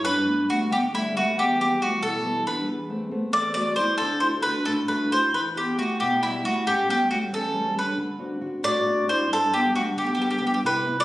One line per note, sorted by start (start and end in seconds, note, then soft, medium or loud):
0.01 0.45 G2 medium
0.01 0.45 D4 medium
0.01 0.45 B4 loud
0.25 0.46 G3 soft
0.25 0.47 A3 soft
0.25 0.47 B3 soft
0.47 0.83 G3 soft
0.47 0.83 A3 soft
0.47 0.70 A3 medium
0.47 0.84 B3 soft
0.47 0.69 F#4 medium
0.70 1.13 D3 medium
0.70 0.82 B3 medium
0.70 0.78 G4 medium
0.93 1.12 G3 medium
0.93 1.14 G3 medium
0.93 1.13 A3 soft
0.93 1.13 B3 medium
0.93 1.14 E4 medium
1.14 1.31 G3 soft
1.14 1.32 A3 soft
1.14 1.32 B3 soft
1.14 1.38 F#4 medium
1.19 1.37 A3 medium
1.36 1.78 E2 medium
1.36 1.58 G4 medium
1.40 1.59 B3 medium
1.57 1.79 E3 soft
1.57 1.79 G3 soft
1.57 1.79 B3 soft
1.57 1.80 G4 medium
1.61 1.80 B3 medium
1.80 2.15 E3 soft
1.80 2.15 G3 soft
1.80 2.02 A3 medium
1.80 2.15 B3 soft
1.80 2.01 F#4 medium
2.01 2.44 B2 medium
2.01 2.44 E4 medium
2.01 2.43 A4 medium
2.23 2.45 E3 soft
2.23 2.46 G3 soft
2.23 2.46 B3 medium
2.46 2.63 E3 soft
2.46 2.64 G3 soft
2.46 2.64 B3 soft
2.46 2.67 D4 medium
2.46 2.67 B4 medium
2.67 3.10 E2 medium
2.89 3.10 A3 soft
2.89 3.10 B3 soft
2.89 3.10 C4 soft
3.11 3.47 A3 soft
3.11 3.47 B3 soft
3.11 3.47 C4 medium
3.33 3.77 E2 medium
3.33 3.54 A4 medium
3.33 3.53 D5 loud
3.54 3.77 A3 soft
3.54 3.77 B3 soft
3.54 3.78 C4 medium
3.54 3.76 F#4 medium
3.54 3.75 D5 medium
3.76 3.95 A3 soft
3.76 3.96 B3 soft
3.76 3.96 C4 soft
3.76 3.99 E4 medium
3.76 3.97 C5 medium
3.98 4.43 D3 medium
3.98 4.21 D4 medium
3.98 4.19 A4 medium
4.20 4.43 A3 soft
4.20 4.43 D4 soft
4.20 4.32 E4 medium
4.20 4.44 F#4 soft
4.20 4.27 C5 medium
4.42 4.80 A3 soft
4.42 4.65 D4 medium
4.42 4.80 D4 soft
4.42 4.80 F#4 soft
4.42 4.64 B4 medium
4.65 5.10 A2 medium
4.65 4.77 D4 medium
4.65 4.72 A4 medium
4.88 5.09 A3 medium
4.88 5.10 D4 soft
4.88 5.10 D4 medium
4.88 5.10 F#4 soft
4.88 5.09 B4 medium
5.11 5.29 A3 soft
5.11 5.29 D4 soft
5.11 5.33 E4 medium
5.11 5.29 F#4 soft
5.11 5.34 C5 medium
5.33 5.77 E3 medium
5.33 5.45 E4 medium
5.33 5.40 B4 medium
5.55 5.76 B3 soft
5.55 5.77 B3 medium
5.55 5.77 E4 soft
5.55 5.77 G4 soft
5.55 5.77 G4 medium
5.77 5.99 A3 medium
5.77 6.13 B3 soft
5.77 6.13 E4 soft
5.77 5.99 F#4 medium
5.77 6.13 G4 soft
6.00 6.43 B2 medium
6.00 6.22 B3 medium
6.00 6.22 G4 medium
6.21 6.43 G3 medium
6.21 6.43 B3 soft
6.21 6.42 E4 soft
6.21 6.43 E4 medium
6.21 6.43 G4 medium
6.44 6.65 A3 medium
6.44 6.61 B3 soft
6.44 6.61 E4 soft
6.44 6.65 F#4 medium
6.44 6.62 G4 soft
6.66 7.09 A2 medium
6.66 6.87 C#4 medium
6.66 6.87 G4 medium
6.88 7.09 G3 soft
6.88 7.09 A3 soft
6.88 7.09 B3 medium
6.88 7.09 C#4 soft
6.88 7.10 G4 medium
7.10 7.45 G3 soft
7.10 7.45 A3 soft
7.10 7.22 A3 medium
7.10 7.46 C#4 soft
7.10 7.16 F#4 medium
7.32 7.74 E2 medium
7.32 7.74 A4 medium
7.36 7.75 C#4 medium
7.53 7.74 G3 medium
7.53 7.74 A3 soft
7.53 7.75 C#4 medium
7.75 7.93 G3 soft
7.75 7.93 A3 soft
7.75 7.93 C#4 medium
7.75 7.98 B4 medium
7.80 7.99 D4 medium
7.97 8.40 D3 medium
8.19 8.39 C4 soft
8.19 8.40 D4 soft
8.19 8.40 F#4 soft
8.40 8.76 C4 medium
8.40 8.77 D4 soft
8.40 8.77 F#4 medium
8.63 9.06 A2 medium
8.63 9.05 F#4 medium
8.63 9.05 D5 loud
8.86 9.06 C4 medium
8.86 9.06 D4 soft
8.86 9.07 F#4 medium
9.07 9.25 C4 soft
9.07 9.25 D4 soft
9.07 9.30 E4 medium
9.07 9.26 F#4 medium
9.07 9.29 C5 medium
9.29 9.72 G2 medium
9.29 9.52 D4 medium
9.33 9.52 A4 medium
9.51 9.71 G3 soft
9.51 9.72 B3 soft
9.51 9.74 B3 medium
9.51 9.73 D4 soft
9.51 9.75 G4 medium
9.73 10.09 G3 soft
9.73 10.10 B3 soft
9.73 10.10 D4 soft
9.73 9.81 F#4 medium
9.78 9.87 A3 medium
9.96 10.40 D3 medium
9.96 10.60 B3 medium
9.96 10.04 G4 medium
10.06 10.12 G4 soft
10.15 10.39 G3 soft
10.15 10.40 B3 soft
10.15 10.40 D4 soft
10.15 10.20 G4 medium
10.22 10.28 G4 soft
10.31 10.36 G4 medium
10.38 10.59 G3 soft
10.38 10.59 B3 soft
10.38 10.59 D4 soft
10.38 10.44 G4 soft
10.47 10.52 G4 medium
10.54 10.59 G4 soft
10.64 11.04 C3 medium
10.64 10.95 E4 medium
10.64 10.96 B4 medium
10.85 11.04 B3 soft
10.85 11.04 C4 soft
10.85 11.04 E4 soft
10.97 11.04 F4 medium
10.97 11.04 D5 loud